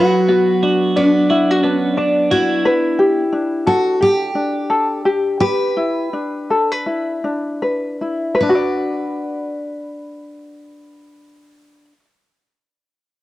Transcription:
Already playing: clean electric guitar F#3, steel-string acoustic guitar F#4, ukulele B4
0.28 clean electric guitar B3, ukulele F#4
0.63 ukulele D4, clean electric guitar F#4
0.96 clean electric guitar B3, steel-string acoustic guitar D4, ukulele D5
1.30 ukulele E4, clean electric guitar F#4
1.51 ukulele F#4
1.62 clean electric guitar B3, steel-string acoustic guitar C#4, ukulele D4
1.97 clean electric guitar D4, ukulele D5
2.31 steel-string acoustic guitar E4, ukulele F#4, clean electric guitar F#4
2.65 ukulele B4
2.99 ukulele G4
3.33 ukulele D4
3.67 steel-string acoustic guitar F#4, ukulele A4
4.01 ukulele G4, steel-string acoustic guitar G4
4.35 ukulele D4
4.70 ukulele A4
5.05 ukulele G4
5.40 ukulele G4, steel-string acoustic guitar B4
5.77 ukulele E4
6.13 ukulele D4
6.50 ukulele A4
6.72 ukulele B4
6.86 ukulele E4
7.24 ukulele D4
7.62 ukulele B4
8.01 ukulele E4
8.35 ukulele B4
8.41 ukulele D4, steel-string acoustic guitar B4
8.49 ukulele F#4
8.55 ukulele D5

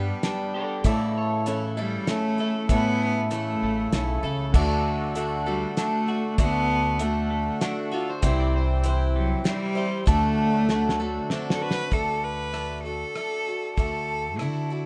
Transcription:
Already playing: clean electric guitar G2 G3 B3 G4, cello G3, accordion G3 B3 D4 G4, steel-string acoustic guitar D4 G4 B4
0.23 steel-string acoustic guitar G3 D4 G4 B4, grand piano D4 G4 D5, snare, closed hi-hat
0.54 clean electric guitar G4, electric slide guitar A4 D5
0.83 upright bass A2, steel-string acoustic guitar A2 E3 A3 E4 A4, accordion C#3 A3 E4 A4, grand piano A3 E4 A4, electric slide guitar A4 D5, kick, closed hi-hat
1.17 electric slide guitar C#5
1.46 clean electric guitar E3, steel-string acoustic guitar A3 C#4 E4 A4, grand piano C#4 E4 A4, closed hi-hat
1.77 cello G3, steel-string acoustic guitar A3 C#4 E4 A4
2.07 steel-string acoustic guitar A3 C#4 E4 A4, cello A3, grand piano C#4 E4 A4, snare, closed hi-hat
2.38 steel-string acoustic guitar A3 C#4 E4 A4
2.69 steel-string acoustic guitar A2 E3 A3 C#4 E4 A4, upright bass A2, cello B3, kick, closed hi-hat
3.30 clean electric guitar E3, steel-string acoustic guitar A3 C#4 E4 A4, cello A3, grand piano C#4 E4 A4, closed hi-hat
3.62 upright bass A1, clean electric guitar A3
3.92 upright bass B1, steel-string acoustic guitar A3 C#4 E4 A4, grand piano C#4 E4 A4, snare, closed hi-hat
4.23 upright bass C#2, steel-string acoustic guitar A3 C#4 E4 A4
4.52 upright bass D2, steel-string acoustic guitar D3 A3 D4 F#4, accordion A3 D4 F#4 A4, grand piano D4 F#4 A4, kick, crash
4.56 steel-string acoustic guitar A4
5.14 clean electric guitar D3, steel-string acoustic guitar A3 D4 F#4 A4, grand piano D4 F#4 A4, closed hi-hat
5.46 cello G3, clean electric guitar A3, steel-string acoustic guitar D4 F#4 A4
5.76 steel-string acoustic guitar A3 D4 F#4 A4, cello A3, grand piano D4 F#4 A4, snare, closed hi-hat
6.07 steel-string acoustic guitar D4 F#4 A4
6.38 upright bass D2, steel-string acoustic guitar D3 A3 D4 F#4 A4, cello B3, kick, closed hi-hat
6.98 clean electric guitar D3, steel-string acoustic guitar A3 D4 F#4 A4, grand piano D4 F#4 A4, closed hi-hat
7.03 cello A3
7.30 clean electric guitar A3
7.60 steel-string acoustic guitar A3 D4 F#4 A4, grand piano D4 F#4 A4, snare, closed hi-hat
7.91 steel-string acoustic guitar D4 F#4 A4, electric slide guitar F4
8.10 electric slide guitar C5
8.22 upright bass C2, steel-string acoustic guitar C3 E3 G3 C4 E4 C5, accordion E3 C4 E4 G5, grand piano E4 G4 C5, kick, closed hi-hat
8.40 electric slide guitar D5
8.56 electric slide guitar C5
8.84 clean electric guitar E3, steel-string acoustic guitar C4 E4 C5, grand piano E4 G4 C5, closed hi-hat
9.16 cello F#3, clean electric guitar G3
9.44 steel-string acoustic guitar G3 C4 E4 C5, cello G3, grand piano E4 G4 D5, snare, closed hi-hat
9.75 steel-string acoustic guitar G3 C4 E4 C5, clean electric guitar G4
10.06 upright bass D2, steel-string acoustic guitar D3 A3 D4 F#4 A4, accordion F#3 A3 D4 F#4, cello A3, grand piano D4 F#4 A4, kick, closed hi-hat
10.69 clean electric guitar D3, steel-string acoustic guitar A3 D4 F#4 A4, grand piano D4 F#4 A4, snare
10.89 snare
11.00 clean electric guitar A3, steel-string acoustic guitar D4 F#4 A4
11.30 steel-string acoustic guitar A3 D4 F#4 A4, grand piano C4 D4 F#4, snare
11.50 snare
11.55 cello A4
11.61 clean electric guitar F#4, cello B4
11.71 snare
11.91 upright bass D2, steel-string acoustic guitar D3 A3 D4 F#4 A4, cello A4, kick, ride
12.24 cello B4
12.53 steel-string acoustic guitar A3 D4 F#4 A4, cross-stick, ride
12.84 steel-string acoustic guitar D4 F#4 A4, cello A4
13.15 steel-string acoustic guitar A3 D4 F#4 A4, cross-stick, ride
13.47 steel-string acoustic guitar D4 F#4 A4
13.76 upright bass D2, steel-string acoustic guitar D3 A3 D4 F#4 A4, cello A4, kick, ride
14.39 upright bass D3, steel-string acoustic guitar A3 D4 F#4 A4, cello E4, cross-stick, ride
14.70 steel-string acoustic guitar D4 F#4 A4

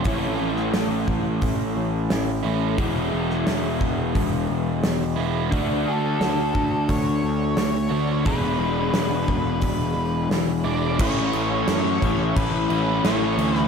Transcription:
0.04 picked electric bass A1, overdriven electric guitar A2 E3 A3 C#4 E4, kick, open hi-hat
0.40 picked electric bass A1
0.57 snare
0.74 picked electric bass A1, snare, open hi-hat
1.08 picked electric bass A1, kick
1.42 picked electric bass A1, kick, open hi-hat
1.76 picked electric bass A1
2.10 picked electric bass A1, snare, open hi-hat
2.43 picked electric bass A1, overdriven electric guitar A2 E3 A3 C#4 E4
2.76 picked electric bass E1, overdriven electric guitar E2 B2 E3 G#3 B3 E4, kick, open hi-hat
3.13 picked electric bass E1
3.30 snare
3.47 picked electric bass E1, snare, open hi-hat
3.81 picked electric bass E1, kick
4.15 picked electric bass E1, kick, open hi-hat
4.50 picked electric bass E1
4.84 picked electric bass E1, snare, open hi-hat
5.16 picked electric bass E1, overdriven electric guitar E2 B2 E3 G#3 B3 E4
5.50 picked electric bass D2, overdriven electric guitar D3 A3 D4 F#4, kick, open hi-hat
5.87 picked electric bass D2, lead electric guitar A4
6.21 picked electric bass D2, snare, open hi-hat
6.55 picked electric bass D2, kick
6.89 picked electric bass D2, lead electric guitar C#5, kick, open hi-hat
7.23 picked electric bass D2
7.57 picked electric bass D2, lead electric guitar C#5, snare, open hi-hat
7.89 picked electric bass D2, overdriven electric guitar D3 A3 D4 F#4
8.23 overdriven electric guitar E2 B2 E3 G#3 D4 E4, lead electric guitar B4, kick, open hi-hat
8.27 picked electric bass E1, overdriven electric guitar B3 G#4
8.59 picked electric bass E1
8.93 picked electric bass E1, snare, open hi-hat
9.28 picked electric bass E1, kick
9.61 picked electric bass E1, kick, open hi-hat
9.96 picked electric bass E1
10.29 picked electric bass E1, snare, open hi-hat
10.64 picked electric bass E1, overdriven electric guitar E2 B2 E3 G#3 D4 E4, lead electric guitar D5
10.98 picked electric bass A1, overdriven electric guitar A2 E3 A3 C#4 E4, lead electric guitar C#5, kick, crash
11.33 picked electric bass A1, crash
11.68 picked electric bass F#2, lead electric guitar C#5, snare, crash
12.02 picked electric bass A1, overdriven electric guitar A2 E3 A3 C#4 E4, kick, crash
12.36 picked electric bass A1, lead electric guitar B4, kick, crash
12.69 picked electric bass A1, overdriven electric guitar A2 E3 A3 C#4 E4, crash
13.04 picked electric bass A1, overdriven electric guitar A2 E3 A3 C#4 E4, lead electric guitar C#5, snare, crash
13.37 picked electric bass D2, crash
13.55 lead electric guitar B4, snare

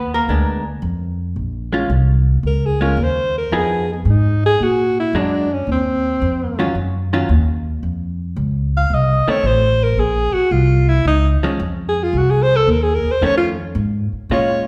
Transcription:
Already playing: upright bass D#2, hollow-body jazz guitar B3 B4
0.14 hollow-body jazz guitar A#3 A#4
0.28 upright bass D2, hollow-body jazz guitar G#3 B3 D4
0.82 upright bass F2
1.36 upright bass A#1
1.73 hollow-body jazz guitar G#3 C#4 F4
1.90 upright bass C2
2.43 upright bass C#2
2.47 alto saxophone A#4
2.66 alto saxophone G#4
2.81 hollow-body jazz guitar G#3 C#4 F4, alto saxophone A#4
2.97 upright bass D#2
3.03 alto saxophone C5
3.38 alto saxophone A#4
3.52 upright bass F2, hollow-body jazz guitar F3 B3 D#4 G#4
3.57 alto saxophone G#4
3.93 alto saxophone B3
4.05 upright bass G#2
4.10 alto saxophone D#4
4.46 alto saxophone G#4
4.60 upright bass A#2, alto saxophone F#4
5.00 alto saxophone E4
5.13 upright bass F#2, hollow-body jazz guitar F#3 G#3 D4
5.18 alto saxophone D4
5.53 alto saxophone C#4
5.67 upright bass D#2
5.72 alto saxophone C4
6.22 upright bass F2
6.59 hollow-body jazz guitar D#3 F#3 C#4 F4
6.75 upright bass F#2
7.13 hollow-body jazz guitar D#3 F#3 C#4 F4
7.29 upright bass D#2
7.83 upright bass F2
8.36 upright bass C#2
8.77 alto saxophone F5
8.90 upright bass C2
8.94 alto saxophone D#5
9.27 hollow-body jazz guitar D#3 A3 C4, alto saxophone C#5, muted upright bass stroke
9.43 upright bass A1, alto saxophone C5
9.83 alto saxophone A#4
9.97 upright bass A#1, alto saxophone G#4
10.34 alto saxophone F#4, muted upright bass stroke
10.51 upright bass C2, alto saxophone F4
10.88 alto saxophone E4
11.05 upright bass C#2, alto saxophone D#4
11.43 hollow-body jazz guitar F3 G#3 C#4
11.60 upright bass F2
11.89 alto saxophone G#4
12.03 alto saxophone F4
12.13 upright bass C2
12.17 alto saxophone F#4
12.31 alto saxophone G#4
12.43 alto saxophone C5
12.56 alto saxophone A4
12.67 upright bass D#2, alto saxophone A#4
12.83 alto saxophone G#4
12.95 alto saxophone A#4
13.04 muted upright bass stroke
13.11 alto saxophone C5
13.21 upright bass F2, hollow-body jazz guitar D#3 A3 C#4, alto saxophone C#5
13.37 alto saxophone F4
13.75 upright bass G#2
14.12 muted upright bass stroke
14.30 upright bass A#2, hollow-body jazz guitar G#3 C#4 F4, alto saxophone C#5

